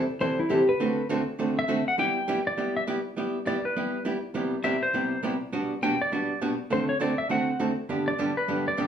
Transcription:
0.20 hollow-body jazz guitar C3 E3 G3 C4 E4 A4, electric slide guitar C5
0.39 electric slide guitar E4
0.50 hollow-body jazz guitar C3 E3 G3 C4 E4 A4, electric slide guitar G4
0.69 electric slide guitar B4
0.80 hollow-body jazz guitar D3 A3 C4 F#4 A4
1.09 hollow-body jazz guitar D3 A3 C4 F#4 A4
1.39 hollow-body jazz guitar D3 A3 C4 F#4 A4
1.59 electric slide guitar E5
1.68 hollow-body jazz guitar D3 A3 C4 F#4 A4
1.88 electric slide guitar F#5
1.98 hollow-body jazz guitar G3 B3 E4 G4, electric slide guitar G5
2.28 hollow-body jazz guitar G3 B3 E4 G4
2.47 electric slide guitar D5
2.58 hollow-body jazz guitar G3 B3 E4 G4
2.77 electric slide guitar E5
2.87 hollow-body jazz guitar G3 B3 E4 G4
3.17 hollow-body jazz guitar G3 B3 E4 G4
3.46 hollow-body jazz guitar G3 B3 E4 G4, electric slide guitar D5
3.65 electric slide guitar B4
3.76 hollow-body jazz guitar G3 B3 E4 G4
4.05 hollow-body jazz guitar G3 B3 E4 G4
4.34 hollow-body jazz guitar C3 G3 B3 E4 G4
4.63 hollow-body jazz guitar C3 G3 B3 E4 G4, electric slide guitar E5
4.83 electric slide guitar C5
4.94 hollow-body jazz guitar C3 G3 B3 E4 G4
5.23 hollow-body jazz guitar C3 G3 B3 E4 G4
5.52 hollow-body jazz guitar B2 G3 B3 D4 F#4
5.82 hollow-body jazz guitar B2 G3 B3 D4 F#4, electric slide guitar G5
6.02 electric slide guitar D5
6.12 hollow-body jazz guitar B2 G3 B3 D4 F#4
6.42 hollow-body jazz guitar B2 G3 B3 D4 F#4
6.70 hollow-body jazz guitar D3 A3 C4 F#4 A4, electric slide guitar C5
6.89 electric slide guitar C#5
7.00 hollow-body jazz guitar D3 A3 C4 F#4 A4, electric slide guitar D5
7.18 electric slide guitar E5
7.29 hollow-body jazz guitar D3 A3 C4 F#4 A4, electric slide guitar F#5
7.59 hollow-body jazz guitar D3 A3 C4 F#4 A4
7.89 hollow-body jazz guitar G2 D3 G3 B3 D4 G4
8.08 electric slide guitar D5
8.18 hollow-body jazz guitar G2 D3 G3 B3 D4 G4
8.37 electric slide guitar B4
8.48 hollow-body jazz guitar G2 D3 G3 B3 D4 G4
8.68 electric slide guitar D5
8.77 hollow-body jazz guitar G2 D3 G3 B3 D4 G4

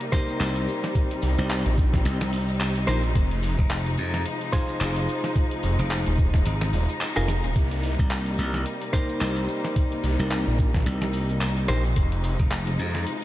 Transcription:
Already playing: string section C3 G3 A#3 D#4
0.01 closed hi-hat
0.12 clean electric guitar D#4 G4 A#4 C5, kick, snare, open hi-hat, cabasa
0.29 closed hi-hat, cabasa
0.40 slap bass C2, clap, closed hi-hat, cabasa
0.56 closed hi-hat
0.68 cabasa
0.84 snare, closed hi-hat, cabasa
0.95 string section C4, kick, closed hi-hat, cabasa
1.11 closed hi-hat
1.22 detuned saw bass C2, open hi-hat, cabasa
1.38 slap bass C2, cabasa
1.50 clap, closed hi-hat, cabasa
1.66 detuned saw bass A#1, closed hi-hat
1.78 kick, cabasa
1.93 kick, snare, closed hi-hat, cabasa
2.05 slap bass C2, closed hi-hat, cabasa
2.21 snare, closed hi-hat
2.33 open hi-hat, cabasa
2.48 cabasa
2.54 closed hi-hat
2.60 clap, closed hi-hat, cabasa
2.76 closed hi-hat
2.87 detuned saw bass A#1, clean electric guitar D#4 G4 A#4 C5, snare, cabasa
3.03 closed hi-hat, cabasa
3.15 detuned saw bass F1, string section F3 G#3, kick, closed hi-hat, cabasa
3.31 closed hi-hat
3.43 open hi-hat, cabasa
3.59 slap bass F1, kick, cabasa
3.69 clap, closed hi-hat, cabasa
3.86 closed hi-hat
3.97 slap bass F2, cabasa
4.14 snare, closed hi-hat, cabasa
4.25 closed hi-hat, cabasa
4.41 closed hi-hat
4.52 clean electric guitar D#4 F4 G#4 C5, kick, snare, open hi-hat, cabasa
4.69 closed hi-hat, cabasa
4.80 slap bass F1, clap, closed hi-hat, cabasa
4.96 closed hi-hat
5.09 cabasa
5.24 snare, closed hi-hat, cabasa
5.36 kick, closed hi-hat, cabasa
5.51 closed hi-hat
5.63 detuned saw bass F1, open hi-hat, cabasa
5.79 slap bass F1, closed hi-hat, cabasa
5.90 clap, closed hi-hat, cabasa
6.06 detuned saw bass D#1, closed hi-hat
6.18 kick, cabasa
6.34 kick, snare, closed hi-hat, cabasa
6.45 slap bass G#1, closed hi-hat, cabasa
6.61 snare, closed hi-hat
6.73 detuned saw bass D#1, open hi-hat, cabasa
6.89 closed hi-hat, cabasa
7.01 clap, closed hi-hat, cabasa
7.16 detuned saw bass F1, clean electric guitar D#4 F4 G#4 A#4, closed hi-hat
7.28 snare, cabasa
7.44 detuned saw bass D#1, closed hi-hat, cabasa
7.56 detuned saw bass C2, string section C3 G3 A#3, kick, closed hi-hat, cabasa
7.71 closed hi-hat
7.83 open hi-hat, cabasa
7.99 slap bass C2, kick, cabasa
8.11 clap, closed hi-hat, cabasa
8.26 closed hi-hat
8.38 slap bass C2, cabasa
8.54 snare, closed hi-hat, cabasa
8.65 closed hi-hat, cabasa
8.82 closed hi-hat
8.93 clean electric guitar D#4 G4 A#4 C5, kick, snare, open hi-hat, cabasa
9.09 closed hi-hat, cabasa
9.21 slap bass C2, clap, closed hi-hat, cabasa
9.37 closed hi-hat
9.48 cabasa
9.64 snare, closed hi-hat, cabasa
9.76 kick, closed hi-hat, cabasa
9.92 closed hi-hat
10.03 detuned saw bass C2, open hi-hat, cabasa
10.19 slap bass C2, cabasa
10.31 clap, closed hi-hat, cabasa
10.47 detuned saw bass A#1
10.58 kick, cabasa
10.74 kick, snare, closed hi-hat, cabasa
10.76 snare
10.80 snare
10.82 snare
10.84 slap bass C2, snare, closed hi-hat, cabasa
11.02 snare, closed hi-hat
11.13 open hi-hat, cabasa
11.29 closed hi-hat, cabasa
11.41 clap, closed hi-hat, cabasa
11.57 closed hi-hat
11.68 detuned saw bass A#1, clean electric guitar D#4 G4 A#4 C5, snare, cabasa
11.85 closed hi-hat, cabasa
11.96 detuned saw bass F1, string section F3 G#3 D#4, kick, closed hi-hat, cabasa
12.12 closed hi-hat
12.24 open hi-hat, cabasa
12.39 slap bass F1, kick, cabasa
12.51 clap, closed hi-hat, cabasa
12.67 closed hi-hat
12.79 slap bass F2, cabasa
12.95 snare, closed hi-hat, cabasa
13.07 closed hi-hat, cabasa

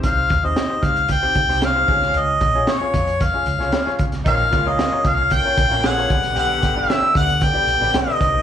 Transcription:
Already playing: grand piano C3 C4 D#4 G4 C5
0.03 fretless electric bass C2, harmonica F5, kick, closed hi-hat
0.29 fretless electric bass D#2, kick, closed hi-hat
0.43 grand piano C4 D#4 G4 C5, harmonica D#5
0.56 snare, closed hi-hat
0.68 grand piano C4 D#4 G4 C5, muted fretless electric bass stroke
0.83 fretless electric bass C#2, harmonica F5, kick, closed hi-hat
0.96 closed hi-hat
1.08 harmonica G5, kick, closed hi-hat
1.21 grand piano C4 D#4 G4 C5
1.35 fretless electric bass C2, kick, closed hi-hat
1.48 fretless electric bass C2, grand piano C4 D#4 G4 C5, snare
1.62 harmonica F5, snare, closed hi-hat
1.75 grand piano C4 D#4 G4 C5
1.88 fretless electric bass C#2, grand piano C#3 C#4 F4 G#4 C#5, kick, open hi-hat
2.02 snare
2.14 fretless electric bass C#2, closed hi-hat
2.19 harmonica D#5
2.41 fretless electric bass A#1, kick, closed hi-hat
2.54 grand piano C#4 F4 G#4 C#5
2.67 snare, closed hi-hat
2.71 harmonica C#5
2.80 grand piano C#4 F4 G#4 C#5, muted fretless electric bass stroke
2.93 fretless electric bass F2, kick, closed hi-hat
3.07 closed hi-hat
3.20 harmonica F5, kick, closed hi-hat
3.33 grand piano C#4 F4 G#4 C#5
3.46 fretless electric bass C#2, closed hi-hat
3.59 fretless electric bass C2, grand piano C#4 F4 G#4 C#5, snare
3.72 snare, closed hi-hat
3.85 grand piano C#4 F4 G#4 C#5, muted fretless electric bass stroke, snare
3.99 fretless electric bass C#2, kick, closed hi-hat
4.12 snare, closed hi-hat
4.25 fretless electric bass A#1, grand piano A#2 C#4 F4 A#4 C#5, horn section D#3 C4 D#4, tonewheel organ A#3 C#4 F4, harmonica F5, kick, closed hi-hat
4.50 fretless electric bass C#2, horn section C#3 A#3 F4, kick, closed hi-hat
4.65 grand piano C#4 F4 A#4 C#5, harmonica D#5
4.79 snare, closed hi-hat
4.91 grand piano C#4 F4 A#4 C#5, muted fretless electric bass stroke
5.05 fretless electric bass C2, kick, closed hi-hat
5.09 harmonica F5
5.30 harmonica G5, kick, closed hi-hat
5.44 grand piano C#4 F4 A#4 C#5
5.57 fretless electric bass A#1, kick, closed hi-hat
5.70 fretless electric bass A#1, grand piano C#4 F4 A#4 C#5, snare
5.83 horn section D3 B3 G#4, harmonica F#5, snare, closed hi-hat
5.96 grand piano C#4 F4 A#4 C#5, snare
6.10 fretless electric bass B1, grand piano B2 D4 G4 B4 D5, tonewheel organ D3 B3 G4, kick, closed hi-hat
6.23 snare, closed hi-hat
6.35 fretless electric bass B1, horn section D3 B3 G4, closed hi-hat
6.39 harmonica F#5
6.61 fretless electric bass G1, horn section D3 B3 G4, kick, closed hi-hat
6.76 grand piano D4 G4 B4 D5, harmonica E5
6.90 snare, closed hi-hat
7.01 grand piano D4 G4 B4 E5, muted fretless electric bass stroke
7.15 fretless electric bass D2, harmonica F#5, kick, closed hi-hat
7.29 closed hi-hat
7.41 harmonica G5, kick, closed hi-hat
7.53 grand piano D4 G4 B4 D5
7.67 fretless electric bass B1, closed hi-hat
7.80 fretless electric bass A1, grand piano D4 G4 B4 D5, snare
7.94 fretless electric bass B1, harmonica D#5, snare, closed hi-hat
8.06 grand piano D4 G4 B4 D5, snare
8.20 fretless electric bass C2, grand piano C3 D#4 G4 C5 D#5, tonewheel organ C3 D#3, kick, closed hi-hat
8.34 fretless electric bass B1

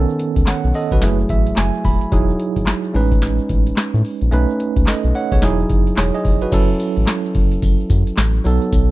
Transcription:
Already playing: tine electric piano D#3 B3 C#4 A4
0.09 shaker
0.19 closed hi-hat
0.36 analog synth bass C#2, kick, closed hi-hat, shaker
0.47 tine electric piano C#5 F#5, snare, clap, closed hi-hat, shaker
0.64 analog synth bass B1, shaker
0.74 tine electric piano A4 D#5, open hi-hat
0.91 analog synth bass B1, tine electric piano F#4 B4, kick, closed hi-hat, shaker
1.01 analog synth bass F#1, tine electric piano F#3 A3 E4 G#4, snare, closed hi-hat, shaker
1.19 shaker
1.29 analog synth bass A1, tine electric piano E5, kick, closed hi-hat, shaker
1.47 closed hi-hat, shaker
1.57 analog synth bass F#1, tine electric piano G#5, snare, clap, closed hi-hat, shaker
1.74 shaker
1.84 analog synth bass D#1, tine electric piano B5, kick, open hi-hat, shaker
2.01 closed hi-hat, shaker
2.12 analog synth bass E1, tine electric piano F#3 D#4 E4 G#4, kick, closed hi-hat, shaker
2.29 shaker
2.40 closed hi-hat
2.56 analog synth bass G#1, kick, closed hi-hat, shaker
2.67 snare, clap, closed hi-hat, shaker
2.84 shaker
2.94 analog synth bass A1, tine electric piano G#3 C#4 D#4 B4, open hi-hat
3.11 kick, closed hi-hat, shaker
3.22 snare, closed hi-hat, shaker
3.39 shaker
3.49 analog synth bass A1, kick, closed hi-hat, shaker
3.66 closed hi-hat, shaker
3.77 snare, clap, closed hi-hat, shaker
3.94 analog synth bass A2, shaker
4.04 open hi-hat, shaker
4.21 analog synth bass A#1, closed hi-hat, shaker
4.31 analog synth bass B1, tine electric piano A3 C#4 D#4 B4, closed hi-hat, shaker
4.49 shaker
4.60 closed hi-hat
4.76 analog synth bass C#2, kick, closed hi-hat, shaker
4.87 tine electric piano A4 D#5, snare, clap, closed hi-hat, shaker
5.04 analog synth bass B1, shaker
5.15 tine electric piano C#5 F#5, open hi-hat
5.31 analog synth bass B1, tine electric piano G#4 C#5, kick, closed hi-hat, shaker
5.42 analog synth bass E1, tine electric piano F#3 D#4 E4 G#4, snare, closed hi-hat, shaker
5.59 shaker
5.70 analog synth bass F#1, kick, closed hi-hat, shaker
5.87 closed hi-hat, shaker
5.97 analog synth bass E1, tine electric piano G#4 C#5, snare, clap, closed hi-hat, shaker
6.14 tine electric piano G#4 D#5, shaker
6.25 analog synth bass F1, kick, open hi-hat, shaker
6.41 tine electric piano F#4 B4, closed hi-hat, shaker
6.52 analog synth bass F#1, tine electric piano F#3 C#4 E4 A4, kick, closed hi-hat, crash, tambourine, shaker
6.69 shaker
6.80 closed hi-hat, tambourine, shaker
6.97 analog synth bass A1, closed hi-hat, shaker
7.07 snare, clap, closed hi-hat, tambourine, shaker
7.25 shaker
7.35 analog synth bass F#1, kick, closed hi-hat
7.52 closed hi-hat, shaker
7.62 analog synth bass F#1, kick, closed hi-hat, tambourine, shaker
7.79 shaker
7.90 analog synth bass F#2, kick, closed hi-hat, tambourine
8.07 closed hi-hat, shaker
8.17 analog synth bass A1, snare, clap, closed hi-hat, tambourine, shaker
8.34 shaker
8.44 analog synth bass B1, tine electric piano F#3 B3 D#4 A4, open hi-hat, tambourine
8.62 closed hi-hat, shaker
8.73 analog synth bass B1, kick, closed hi-hat, tambourine, shaker

